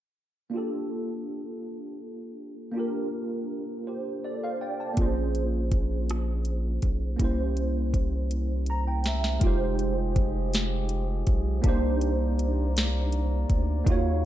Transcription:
0.50 tine electric piano A#3 D4 F4
0.56 tine electric piano G4 A4
2.72 tine electric piano A#3 D4
2.76 tine electric piano F4 G4 A#4
3.87 tine electric piano G4 C5
4.24 tine electric piano A4 D5
4.44 tine electric piano C5 F5
4.61 tine electric piano D5 G5
4.80 tine electric piano D5 A5
4.94 analog synth bass A#1, tine electric piano A#3 C4, kick, closed hi-hat
4.98 tine electric piano F4 G#4 C5
5.02 tine electric piano C#4
5.35 closed hi-hat
5.72 kick, closed hi-hat
6.10 cross-stick, closed hi-hat
6.45 closed hi-hat
6.82 analog synth bass B1, kick, closed hi-hat
7.16 analog synth bass C2, tine electric piano A#3 C#4 E4, kick, closed hi-hat
7.22 tine electric piano G4 C5
7.57 closed hi-hat
7.94 kick, closed hi-hat
8.31 closed hi-hat
8.66 tine electric piano A#5, closed hi-hat
8.87 tine electric piano G5
9.04 tine electric piano E5, snare, closed hi-hat
9.24 snare
9.39 analog synth bass F1, french horn section F3 G#3 G4, tine electric piano G#3 D#4 F4, kick, closed hi-hat
9.45 tine electric piano G4 C5
9.79 closed hi-hat
10.16 kick, closed hi-hat
10.54 snare, closed hi-hat
10.89 closed hi-hat
11.27 analog synth bass B1, kick, closed hi-hat
11.62 analog synth bass C2, french horn section C3 A#3 D5, tine electric piano A#3 D4 D#4, kick, closed hi-hat
11.67 tine electric piano G4 C5
12.01 closed hi-hat
12.39 closed hi-hat
12.77 snare, closed hi-hat
13.12 closed hi-hat
13.50 analog synth bass D2, kick, closed hi-hat
13.84 analog synth bass D#2, french horn section C#3 F#3 F5, tine electric piano A#3 D#4 F4, kick, closed hi-hat
13.90 tine electric piano F#4 C#5

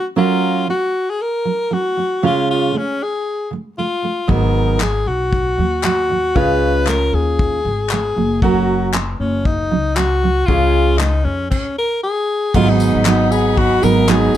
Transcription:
Already playing: steel-string acoustic guitar F#3 C#4
0.16 steel-string acoustic guitar F#3 C#4 F4 A#4, alto saxophone F4
0.68 steel-string acoustic guitar F#3 C#4, alto saxophone F#4
1.10 alto saxophone G#4
1.22 alto saxophone A#4
1.45 steel-string acoustic guitar F#3 C#4
1.71 steel-string acoustic guitar F#3 C#4, alto saxophone F#4
1.97 steel-string acoustic guitar F#3 C#4
2.23 steel-string acoustic guitar C#3 G#3 C#4 F4 G#4, alto saxophone F4
2.51 alto saxophone F4
2.73 steel-string acoustic guitar C#3 G#3
2.78 alto saxophone C#4
3.03 alto saxophone G#4
3.51 steel-string acoustic guitar C#3 G#3
3.78 steel-string acoustic guitar C#3 G#3, alto saxophone F4
4.02 steel-string acoustic guitar C#3 G#3
4.27 upright bass G#1, steel-string acoustic guitar G#2 D#3 F#3 B3 D#4 G#4, alto saxophone A#4, kick
4.80 steel-string acoustic guitar G#2 D#3 F#3, alto saxophone G#4, clap
5.06 upright bass B1, alto saxophone F#4
5.33 kick
5.57 upright bass D#2, steel-string acoustic guitar G#2 D#3 F#3
5.83 steel-string acoustic guitar G#2 D#3 F#3, alto saxophone F#4, clap
6.09 steel-string acoustic guitar G#2 D#3 F#3
6.35 upright bass C#2, steel-string acoustic guitar C#3 G#3 C#4 F4 G#4, alto saxophone B4, kick
6.86 steel-string acoustic guitar C#3 G#3, alto saxophone A#4, clap
7.13 upright bass D#2, alto saxophone G#4
7.39 kick
7.65 upright bass G#1, steel-string acoustic guitar C#3 G#3
7.89 steel-string acoustic guitar C#3 G#3, alto saxophone G#4, clap
8.17 upright bass F#1, steel-string acoustic guitar F#3 C#4
8.42 steel-string acoustic guitar F#3 C#4 A#4, alto saxophone F#4, kick
8.93 steel-string acoustic guitar F#3 C#4, clap
9.19 upright bass F#1, alto saxophone C#4
9.45 alto saxophone D#4, kick
9.71 upright bass C#2, steel-string acoustic guitar F#3 C#4
9.96 steel-string acoustic guitar F#3 C#4, alto saxophone F#4, clap
10.23 steel-string acoustic guitar F#3 C#4
10.46 upright bass C#2, steel-string acoustic guitar C#3 G#3 C#4 F4 G#4, alto saxophone F4, kick
10.98 steel-string acoustic guitar C#3 G#3, alto saxophone D#4, clap
11.24 upright bass F2, alto saxophone C#4
11.50 alto saxophone C#4, kick, crash
11.78 alto saxophone A#4
12.03 alto saxophone G#4
12.54 upright bass G#1, steel-string acoustic guitar G#2 D#3 F#3 B3 D#4 G#4, alto saxophone F4, string section G#4 D#5 F#5 B5, kick, crash
12.70 alto saxophone D#4
12.80 tambourine
12.95 upright bass G#1
13.05 steel-string acoustic guitar F#3 B3 D#4 G#4, alto saxophone D#4, clap
13.32 alto saxophone G#4, tambourine
13.57 alto saxophone F#4, kick
13.82 upright bass G#1, steel-string acoustic guitar F#3 B3 D#4 G#4, alto saxophone A#4, tambourine
14.08 steel-string acoustic guitar F#3 B3 D#4 G#4, alto saxophone G#4, clap

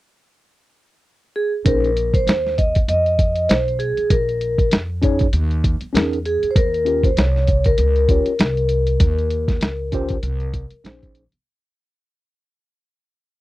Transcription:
1.36 vibraphone G#4
1.65 upright bass A#1, tine electric piano C#4 D#4 G#4 C5, vibraphone A#4, kick, closed hi-hat
1.84 closed hi-hat
1.97 closed hi-hat
2.14 vibraphone C5, kick, closed hi-hat
2.27 upright bass D#2, snare, closed hi-hat
2.47 snare
2.58 vibraphone D#5, kick, closed hi-hat
2.75 kick, closed hi-hat
2.88 upright bass F2, vibraphone D#5, closed hi-hat
3.06 closed hi-hat
3.19 kick, closed hi-hat
3.36 closed hi-hat
3.49 upright bass B1, vibraphone C5, snare, closed hi-hat
3.68 closed hi-hat
3.79 vibraphone G#4, closed hi-hat
3.97 muted upright bass stroke, closed hi-hat
4.10 upright bass A#1, vibraphone A#4, kick, closed hi-hat
4.29 closed hi-hat
4.41 closed hi-hat
4.58 kick, closed hi-hat
4.71 upright bass F2, snare, closed hi-hat
5.02 tine electric piano C#4 D#4 G#4 C#5, kick, closed hi-hat
5.19 kick, closed hi-hat
5.33 upright bass D#2, closed hi-hat
5.51 closed hi-hat
5.64 kick, closed hi-hat
5.81 muted upright bass stroke, closed hi-hat
5.93 upright bass E2, tine electric piano C#4 D#4 G#4 A#4, snare, closed hi-hat
6.13 closed hi-hat
6.25 vibraphone G#4, closed hi-hat
6.43 muted upright bass stroke, closed hi-hat
6.51 vibraphone C5
6.56 upright bass D#2, vibraphone A#4, kick, closed hi-hat
6.74 closed hi-hat
6.85 tine electric piano C#4 F4 G4 A#4, closed hi-hat
7.03 vibraphone C5, kick, closed hi-hat
7.17 upright bass C2, vibraphone C#5, snare, closed hi-hat
7.36 snare
7.47 kick, closed hi-hat
7.64 vibraphone A#4, kick, closed hi-hat
7.78 upright bass C#2, closed hi-hat
7.96 closed hi-hat
8.08 tine electric piano C#4 F4 G4 C#5, kick, closed hi-hat
8.26 muted upright bass stroke, closed hi-hat
8.39 upright bass C2, snare, closed hi-hat
8.57 closed hi-hat
8.69 closed hi-hat
8.87 closed hi-hat
9.00 upright bass D#2, kick, closed hi-hat
9.19 closed hi-hat
9.31 closed hi-hat
9.48 kick, snare, closed hi-hat
9.61 upright bass C#2, snare, closed hi-hat
9.92 tine electric piano C#4 F4 G4 C5, kick, closed hi-hat
10.09 kick, closed hi-hat
10.23 upright bass C2, closed hi-hat
10.40 closed hi-hat
10.54 kick, closed hi-hat
10.71 closed hi-hat
10.84 upright bass A#1, tine electric piano C#4 D#4 G#4 C5, snare, closed hi-hat
11.03 kick, closed hi-hat
11.15 closed hi-hat
11.32 muted upright bass stroke, closed hi-hat

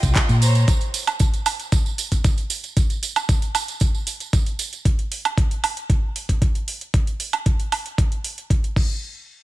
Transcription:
Already playing: violin section G#3 F4 D#5 G5
0.03 fingered electric bass C2, kick, closed hi-hat, tambourine
0.15 kick, clap, closed hi-hat, tambourine
0.29 fingered electric bass A#2, closed hi-hat, tambourine
0.42 violin section C5 C#5 A#5, open hi-hat, tambourine
0.55 closed hi-hat, tambourine
0.68 kick, closed hi-hat, tambourine
0.81 closed hi-hat, tambourine
0.94 open hi-hat, tambourine
1.07 closed hi-hat, tambourine, high woodblock
1.19 kick, closed hi-hat, tambourine
1.34 closed hi-hat, tambourine
1.46 open hi-hat, tambourine, high woodblock
1.60 closed hi-hat, tambourine
1.72 kick, closed hi-hat, tambourine
1.86 tambourine
1.98 open hi-hat, tambourine
2.12 kick, closed hi-hat, tambourine
2.24 kick, closed hi-hat, tambourine
2.38 closed hi-hat, tambourine
2.50 open hi-hat, tambourine
2.63 closed hi-hat, tambourine
2.77 kick, closed hi-hat, tambourine
2.90 closed hi-hat, tambourine
3.03 open hi-hat, tambourine
3.16 closed hi-hat, tambourine, high woodblock
3.29 kick, closed hi-hat, tambourine
3.42 closed hi-hat, tambourine
3.55 open hi-hat, tambourine, high woodblock
3.68 closed hi-hat, tambourine
3.80 kick, closed hi-hat, tambourine
3.95 tambourine
4.07 open hi-hat, tambourine
4.20 closed hi-hat, tambourine
4.33 kick, closed hi-hat, tambourine
4.46 closed hi-hat, tambourine
4.59 open hi-hat, tambourine
4.73 closed hi-hat, tambourine
4.85 kick, closed hi-hat
4.99 closed hi-hat
5.12 open hi-hat
5.25 closed hi-hat, high woodblock
5.38 kick, closed hi-hat
5.51 closed hi-hat
5.64 open hi-hat, high woodblock
5.77 closed hi-hat
5.90 kick, closed hi-hat
6.16 open hi-hat
6.29 kick, closed hi-hat
6.42 kick, closed hi-hat
6.55 closed hi-hat
6.68 open hi-hat
6.81 closed hi-hat
6.94 kick, closed hi-hat
7.07 closed hi-hat
7.20 open hi-hat
7.33 closed hi-hat, high woodblock
7.46 kick, closed hi-hat
7.60 closed hi-hat
7.72 open hi-hat, high woodblock
7.86 closed hi-hat
7.98 kick, closed hi-hat
8.12 closed hi-hat
8.24 open hi-hat
8.38 closed hi-hat
8.50 kick, closed hi-hat
8.64 closed hi-hat
8.76 kick, crash

